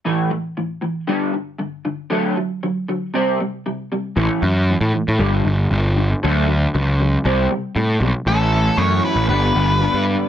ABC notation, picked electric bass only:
X:1
M:4/4
L:1/16
Q:1/4=117
K:Amix
V:1 name="Picked electric bass" clef=bass
z16 | z16 | A,,, z F,,3 A,, z A,, G,,,2 G,,,2 G,,,4 | D,,4 C,,4 =C,,2 z2 A,,2 B,,, z |
A,,,4 F,,2 z A,,, G,,,2 G,,,3 G,,2 z |]